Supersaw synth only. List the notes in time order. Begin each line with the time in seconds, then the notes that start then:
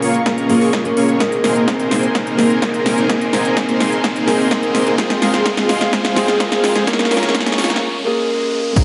Already playing: A#3 C#4 F4 G#4 C#5
0.26 A#3 C#4 F4 G#4 A#4
0.61 A#3 C#4 F4 G#4 C#5
0.73 A#3 C#4 F4 G#4 D#5
0.97 A#3 C#4 F4 G#4 C#5
1.20 A#3 C4 D#4 G#4 A#4
1.44 A#3 C4 D#4 G#4 A#4
1.79 A#3 C4 D#4 G#4 C5
2.15 A#3 C4 D#4 G#4 A#4
2.62 A#3 C4 D#4 G#4
2.98 A#3 C4 D#4 G#4 A#4
3.09 A#3 C4 D#4 G#4 A#4
3.33 A#3 C4 D#4 G#4 A#4
3.68 A#3 C4 D#4 G#4 C5
4.04 A#3 C4 D#4 G#4 A#4
4.51 A#3 C4 D#4 G#4 A#4
4.87 A#3 C4 D#4 G#4 A#4
4.98 G#3 C4 F4 G#4 C5
5.22 G#3 C4 F4 G#4 A#4
5.57 G#3 C4 F4 G#4 D#5
5.93 G#3 C4 F4 G#4 C5
6.40 G#3 C4 F4 G#4 A#4
6.75 G#3 C4 F4 G#4 C5
7.11 A#3 C#4 F4 G#4 A#4
7.46 A#3 C#4 F4 G#4 C#5
8.76 A#3 C4 D#4 G#4 A#4